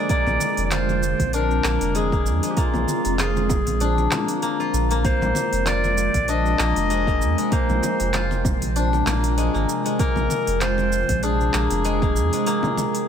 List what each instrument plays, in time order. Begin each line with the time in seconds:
Already playing: ambient pad D3 F3 G#3 F4, guzheng G#3 D4 F4
0.09 guzheng A#3, ambient pad C4, clarinet D5, kick, open hi-hat, shaker
0.27 sub bass A#1, high conga, low conga, shaker
0.40 muted conga, high conga, shaker
0.57 sub bass F1, open hi-hat, shaker
0.65 clarinet D5
0.71 guzheng F4, clarinet C5, clap, open hi-hat, muted conga, shaker
0.89 muted conga, shaker
1.03 shaker
1.20 sub bass A#1, kick, open hi-hat, high conga, shaker
1.33 guzheng D4, clarinet A#4, open hi-hat, shaker
1.51 shaker
1.64 sub bass A#1, guzheng A#3, clap, shaker
1.81 sub bass F1, open hi-hat, muted conga, shaker
1.95 guzheng G#3, clarinet G#4, open hi-hat, shaker
2.12 guzheng A#3, kick, shaker
2.26 sub bass F2, shaker
2.43 guzheng G#3, open hi-hat, shaker
2.51 clarinet G4
2.57 guzheng A#3, clarinet F4, kick, open hi-hat, shaker
2.74 sub bass A#1, high conga, low conga, shaker
2.88 muted conga, high conga, shaker
3.05 sub bass F1, open hi-hat, shaker
3.19 guzheng F4, clarinet G#4, clap, open hi-hat, muted conga, shaker
3.37 muted conga, shaker
3.49 kick, low conga, shaker
3.67 sub bass A#1, open hi-hat, high conga, shaker
3.80 guzheng D4, open hi-hat, shaker
3.98 muted conga, shaker
4.11 guzheng A#3, clap, high conga, low conga, shaker
4.28 open hi-hat, shaker
4.42 guzheng A#3, open hi-hat, shaker
4.60 guzheng F4, shaker
4.73 sub bass A#1, shaker
4.91 guzheng A#3, open hi-hat, shaker
5.05 ambient pad C3 G#3 G5, guzheng A#3, clarinet C5, kick, open hi-hat, shaker
5.21 sub bass A#1, high conga, low conga, shaker
5.35 muted conga, high conga, shaker
5.53 sub bass F1, open hi-hat, shaker
5.66 guzheng F4, clarinet D5, clap, open hi-hat, muted conga, shaker
5.84 muted conga, shaker
5.98 shaker
6.14 sub bass A#1, kick, open hi-hat, high conga, shaker
6.28 guzheng D4, clarinet D#5, open hi-hat, shaker
6.46 shaker
6.59 sub bass A#1, guzheng A#3, clap, shaker
6.76 sub bass F1, open hi-hat, muted conga, shaker
6.90 guzheng G#3, open hi-hat, shaker
7.07 guzheng A#3, kick, shaker
7.21 sub bass F2, shaker
7.38 guzheng G#3, open hi-hat, shaker
7.52 guzheng A#3, clarinet C5, kick, open hi-hat, shaker
7.69 sub bass A#1, high conga, low conga, shaker
7.83 muted conga, high conga, shaker
8.00 sub bass F1, open hi-hat, shaker
8.13 guzheng F4, clap, open hi-hat, muted conga, shaker
8.31 muted conga, shaker
8.45 kick, low conga, shaker
8.62 sub bass A#1, open hi-hat, high conga, shaker
8.76 guzheng D4, open hi-hat, shaker
8.93 muted conga, shaker
9.06 sub bass A#1, guzheng A#3, clap, high conga, low conga, shaker
9.24 open hi-hat, shaker
9.38 guzheng G#3, open hi-hat, shaker
9.54 sub bass G#1, guzheng A#3, shaker
9.69 shaker
9.86 guzheng G#3, open hi-hat, shaker
9.99 guzheng A#3, clarinet A#4, kick, open hi-hat, shaker
10.16 sub bass A#1, high conga, low conga, shaker
10.30 muted conga, high conga, shaker
10.47 sub bass F1, open hi-hat, shaker
10.61 guzheng F4, clarinet C5, clap, open hi-hat, muted conga, shaker
10.78 muted conga, shaker
10.92 shaker
11.09 sub bass A#1, kick, open hi-hat, high conga, shaker
11.23 guzheng D4, clarinet G#4, open hi-hat, shaker
11.41 shaker
11.54 sub bass A#1, guzheng A#3, clap, shaker
11.71 sub bass F1, open hi-hat, muted conga, shaker
11.85 guzheng G#3, open hi-hat, shaker
12.02 guzheng A#3, kick, shaker
12.16 sub bass F2, shaker
12.33 guzheng G#3, open hi-hat, shaker
12.46 guzheng A#3, open hi-hat, shaker
12.63 high conga, low conga, shaker
12.77 muted conga, high conga, shaker
12.95 open hi-hat, shaker